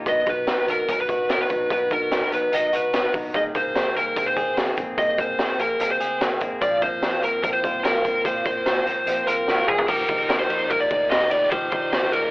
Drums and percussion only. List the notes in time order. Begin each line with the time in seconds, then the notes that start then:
0.06 kick, closed hi-hat
0.26 kick, closed hi-hat
0.47 snare, closed hi-hat
0.68 closed hi-hat
0.88 kick, closed hi-hat
1.09 kick, closed hi-hat
1.29 snare, closed hi-hat
1.49 kick, closed hi-hat
1.70 kick, closed hi-hat
1.90 kick, closed hi-hat
2.11 snare, closed hi-hat
2.32 closed hi-hat
2.52 closed hi-hat
2.72 closed hi-hat
2.93 snare, closed hi-hat
3.13 kick, open hi-hat
3.34 kick, closed hi-hat
3.54 kick, closed hi-hat
3.75 snare, closed hi-hat
3.96 closed hi-hat
4.16 kick, closed hi-hat
4.36 kick, closed hi-hat
4.57 snare, closed hi-hat
4.77 kick, closed hi-hat
4.98 kick, closed hi-hat
5.18 kick, closed hi-hat
5.39 snare, closed hi-hat
5.59 closed hi-hat
5.80 closed hi-hat
6.00 closed hi-hat
6.21 snare, closed hi-hat
6.40 kick, closed hi-hat
6.62 kick, closed hi-hat
6.81 kick, closed hi-hat
7.02 snare, closed hi-hat
7.23 closed hi-hat
7.43 kick, closed hi-hat
7.64 kick, closed hi-hat
7.85 snare, closed hi-hat
8.04 kick, closed hi-hat
8.25 kick, closed hi-hat
8.45 kick, closed hi-hat
8.66 snare, closed hi-hat
8.86 closed hi-hat
9.07 closed hi-hat
9.27 closed hi-hat
9.48 snare
9.68 mid tom
9.78 floor tom
9.88 kick, crash
10.08 kick, ride
10.30 snare, ride
10.50 ride
10.70 kick, ride
10.91 kick, ride
11.11 snare, ride
11.31 ride
11.52 kick, ride
11.72 kick, ride
11.93 snare, ride
12.13 ride